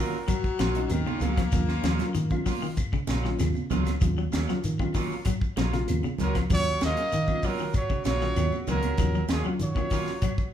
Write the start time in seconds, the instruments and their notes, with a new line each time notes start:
Already playing: clean electric guitar D#3 F#3, reed electric piano F#3 A#3 C#4 F4, tenor saxophone F#3, trumpet A#4
0.00 clean electric guitar A#3 F4
0.14 shekere
0.28 clean electric guitar F#3, baritone saxophone F#3, kick, closed hi-hat, claves, shekere
0.44 kick, shekere
0.59 fingered electric bass A#1, clean electric guitar F3 F#3 A#3 C#4 F4, snare, closed hi-hat, high conga, shekere
0.75 reed electric piano F#3 A#3 C#4 D#4, closed hi-hat, shekere
0.90 fingered electric bass D#2, baritone saxophone D#3, closed hi-hat, high conga, claves, shekere
1.06 clean electric guitar C#3 A#3 C#4 F4, high conga, shekere
1.20 fingered electric bass C#2, clean electric guitar F#3 A#3 C#4, baritone saxophone A#3, muted clean electric guitar stroke, closed hi-hat, high conga, low conga, shekere
1.36 clean electric guitar F3, kick, snare, closed hi-hat, claves, shekere
1.52 fingered electric bass D#2, reed electric piano F#3 A#3 C#4 F4, muted clean electric guitar stroke, kick, snare, closed hi-hat, low conga, shekere
1.69 clean electric guitar A#3 C#4 F4, snare, shekere
1.83 fingered electric bass D#2, clean electric guitar F3 F#3 A#3 C#4 F4, snare, closed hi-hat, high conga, claves, shekere
1.99 reed electric piano F#3 A#3 C#4 F4, snare, closed hi-hat, low conga, shekere
2.15 clean electric guitar D#3, fingered electric bass D#3, closed hi-hat, shekere
2.30 reed electric piano F#3 A#3 C#4 F4, kick, high conga, claves, shekere
2.46 clean electric guitar F#3 A#3 F4, muted clean electric guitar stroke, kick, open hi-hat, shekere
2.62 clean electric guitar D#3, shekere
2.77 kick, closed hi-hat, claves, shekere
2.93 clean electric guitar C#3, kick, shekere
3.07 fingered electric bass A#1, clean electric guitar F#3 A#3 C#4 F4, snare, closed hi-hat, high conga, shekere
3.24 clean electric guitar D#3, reed electric piano F#3 A#3 C#4 F4, snare, shekere
3.39 fingered electric bass D#2, clean electric guitar C#3, snare, closed hi-hat, high conga, claves, shekere
3.55 high conga, shekere
3.70 fingered electric bass C#2, clean electric guitar D#3 F#3 A#3 C#4 F4, closed hi-hat, high conga, low conga, shekere
3.85 snare, closed hi-hat, high conga, claves, shekere
4.01 fingered electric bass D#2, reed electric piano F#3 A#3 C#4 F4, muted clean electric guitar stroke, kick, closed hi-hat, low conga, shekere
4.17 clean electric guitar F#3, shekere
4.32 fingered electric bass D#2, clean electric guitar F#3 A#3 C#4, snare, closed hi-hat, high conga, claves, shekere
4.48 reed electric piano F#3 A#3 C#4 F4, clean electric guitar F#3, snare, low conga, shekere
4.64 fingered electric bass D#3, closed hi-hat, shekere
4.79 clean electric guitar D#3, reed electric piano F#3 A#3 C#4 F4, kick, high conga, claves, shekere
4.94 clean electric guitar D#3 F#3 A#3 C#4 F4, kick, open hi-hat, shekere
5.11 shekere
5.25 clean electric guitar F#3, kick, closed hi-hat, claves, shekere
5.41 kick, shekere
5.57 fingered electric bass A#1, clean electric guitar F3 F#3 A#3 C#4 F4, snare, closed hi-hat, high conga, shekere
5.73 clean electric guitar C#3, reed electric piano F#3 A#3 C#4 F4, snare, closed hi-hat, shekere
5.88 fingered electric bass D#2, closed hi-hat, high conga, claves, shekere
6.03 clean electric guitar C#3, high conga, shekere
6.18 fingered electric bass C#2, clean electric guitar F#3 A#3 C#4 F4, trumpet A#4, closed hi-hat, high conga, low conga, shekere
6.23 tenor saxophone F#3
6.35 clean electric guitar F3, kick, snare, closed hi-hat, claves, shekere
6.50 fingered electric bass D#2, reed electric piano F#3 A#3 C#4 F4, clean electric guitar F#3, tenor saxophone F#3, trumpet C#5, kick, closed hi-hat, low conga, shekere
6.81 fingered electric bass D#2, clean electric guitar F#3 A#3 C#4 F4, tenor saxophone A#3, trumpet D#5, snare, closed hi-hat, high conga, claves, shekere
6.97 reed electric piano F#3 A#3 C#4 G#4, closed hi-hat, shekere
7.12 clean electric guitar D#3, fingered electric bass D#3, closed hi-hat, shekere
7.28 reed electric piano F#3 A#3 C#4 F4, kick, high conga, claves, shekere
7.42 clean electric guitar F#3 A#3 C#4 F4, tenor saxophone F#3, trumpet A#4, kick, open hi-hat, shekere
7.58 clean electric guitar D#3, shekere
7.74 tenor saxophone F#3, trumpet C#5, kick, closed hi-hat, claves, shekere
7.90 clean electric guitar C#3, kick, shekere
8.04 fingered electric bass A#1, clean electric guitar F#3 A#3 C#4 F4, trumpet C#5, snare, closed hi-hat, high conga, shekere
8.09 tenor saxophone F#3
8.21 clean electric guitar D#3, reed electric piano F#3 A#3 C#4 F4, snare, shekere
8.36 fingered electric bass D#2, clean electric guitar D#3, closed hi-hat, high conga, claves, shekere
8.53 high conga, shekere
8.67 fingered electric bass C#2, clean electric guitar D#3 F#3 A#3 C#4 F4, tenor saxophone F#3, trumpet A#4, closed hi-hat, high conga, low conga, shekere
8.83 closed hi-hat, high conga, claves, shekere
8.98 fingered electric bass D#2, clean electric guitar D#3, reed electric piano F#3 A#3 C#4 F4, kick, snare, closed hi-hat, low conga, shekere
9.14 clean electric guitar F#3, shekere
9.29 fingered electric bass D#2, tenor saxophone D#3, clean electric guitar F#3 A#3 C#4 F4, trumpet G#4, snare, closed hi-hat, high conga, claves, shekere
9.44 clean electric guitar F#3, reed electric piano F#3 A#3 C#4 F4, low conga, shekere
9.59 fingered electric bass D#3, tenor saxophone F#3, trumpet C#5, closed hi-hat, shekere
9.75 clean electric guitar D#3, reed electric piano F#3 A#3 C#4 F4, kick, high conga, claves, shekere
9.90 clean electric guitar D#3 F#3 A#3 C#4 F4, kick, open hi-hat, shekere
10.07 snare, shekere
10.22 clean electric guitar F#3, kick, closed hi-hat, claves, shekere
10.38 kick, shekere